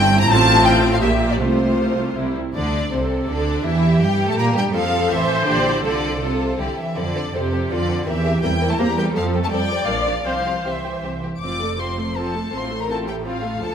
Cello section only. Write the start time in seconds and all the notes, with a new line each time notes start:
Already playing: G2
0.29 A2
1.02 A#2
1.40 C3
2.18 C3
2.56 D3
2.93 C3
3.30 D3
3.65 E3
4.01 G3
4.28 A3
4.38 A#3
4.55 G3
4.73 F3
5.10 E3
5.46 D3
5.83 D3
6.22 C3
6.59 D3
6.78 E3
6.96 D3
7.34 C3
7.71 D3
8.07 E3
8.43 G3
8.70 A3
8.79 A#3
8.96 G3
9.14 F3
9.42 A3
9.51 G3
9.87 F3
10.25 F3
10.64 E3
11.42 F2
12.53 A2
13.61 D2